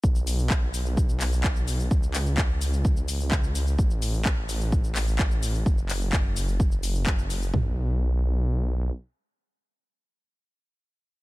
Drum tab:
HH |--o---o---o---o-|--o---o---o---o-|--o---o---o---o-|--o---o---o---o-|
SH |xxxxx-xxxxxxxxxx|xxxxx-xxxxxxxxxx|xxxxx-xxxxxxxxxx|xxxxx-xxxxxxxxxx|
CP |----x-----x-x---|--x-x-------x---|----x-----x-x---|--x-x-------x---|
FT |----------------|----------------|----------------|----------------|
BD |o---o---o---o---|o---o---o---o---|o---o---o---o---|o---o---o---o---|

HH |----------------|----------------|
SH |----------------|----------------|
CP |----------------|----------------|
FT |o---------------|----------------|
BD |o---------------|----------------|